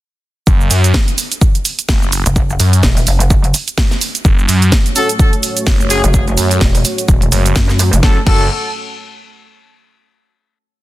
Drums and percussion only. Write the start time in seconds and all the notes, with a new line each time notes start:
0.47 kick, shaker
0.61 shaker
0.71 open hi-hat, shaker
0.84 closed hi-hat, shaker
0.94 kick, snare, shaker
1.08 closed hi-hat, shaker
1.18 open hi-hat, shaker
1.32 closed hi-hat, shaker
1.41 kick, shaker
1.55 closed hi-hat, shaker
1.65 open hi-hat, shaker
1.79 closed hi-hat, shaker
1.89 kick, snare, open hi-hat, shaker
2.02 shaker
2.12 open hi-hat, shaker
2.26 closed hi-hat, shaker
2.36 kick, shaker
2.50 shaker
2.60 open hi-hat, shaker
2.73 closed hi-hat, shaker
2.83 kick, snare, shaker
2.97 open hi-hat, shaker
3.07 open hi-hat, shaker
3.20 closed hi-hat, shaker
3.30 kick, shaker
3.44 closed hi-hat, shaker
3.54 open hi-hat, shaker
3.68 closed hi-hat, shaker
3.78 kick, snare, shaker
3.91 snare, shaker
4.01 open hi-hat, shaker
4.15 closed hi-hat, shaker
4.25 kick, shaker
4.39 shaker
4.49 open hi-hat, shaker
4.62 closed hi-hat, shaker
4.72 kick, snare, shaker
4.86 closed hi-hat, shaker
4.96 open hi-hat, shaker
5.09 closed hi-hat, shaker
5.19 kick, shaker
5.33 closed hi-hat, shaker
5.43 open hi-hat, shaker
5.57 closed hi-hat, shaker
5.67 kick, snare, open hi-hat, shaker
5.80 shaker
5.90 open hi-hat, shaker
6.04 closed hi-hat, shaker
6.14 kick, shaker
6.28 closed hi-hat, shaker
6.38 open hi-hat, shaker
6.51 closed hi-hat, shaker
6.61 kick, snare, shaker
6.75 open hi-hat, shaker
6.85 open hi-hat, shaker
6.98 closed hi-hat, shaker
7.08 kick, shaker
7.22 closed hi-hat, shaker
7.32 open hi-hat, shaker
7.46 closed hi-hat, shaker
7.56 kick, snare, shaker
7.69 snare, shaker
7.79 open hi-hat, shaker
7.93 closed hi-hat, shaker
8.03 kick, snare
8.27 kick, crash